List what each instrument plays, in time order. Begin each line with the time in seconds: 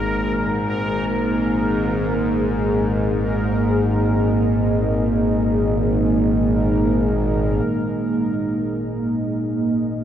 Already playing: synth drone G#1 G#2, ambient pad A#3 G#4, synth texture A#4
1.21 ambient pad D#5
7.65 synth drone G#1 G#2